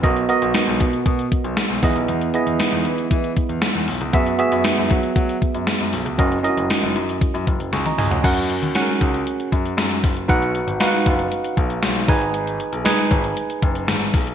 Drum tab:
CC |----------------|----------------|----------------|----------------|
HH |xxxxxxxxxxxxxxox|xxxxxxxxxxxxxxox|xxxxxxxxxxxxxxox|xxxxxxxxxxxxxxox|
TB |----------------|----------------|----------------|----------------|
SD |----o-------o---|----o-------o---|----o-------o---|----o-------o---|
T1 |----------------|----------------|----------------|-------------o--|
T2 |----------------|----------------|----------------|--------------o-|
FT |----------------|----------------|----------------|---------------o|
BD |o-----o-o-o---o-|--------o-o-----|o-----o-o-o-----|o-------o-o-----|

CC |x---------------|----------------|----------------|
HH |xxxxxxxxxxxxxxox|xxxxxxxxxxxxxxox|xxxxxxxxxxxxxxox|
TB |----x-------x---|----x-------x---|----x-------x---|
SD |----o-------o---|----o-------o---|----o-------o---|
T1 |----------------|----------------|----------------|
T2 |----------------|----------------|----------------|
FT |----------------|----------------|----------------|
BD |o-----o---o---o-|o-----o---o---o-|------o---o---o-|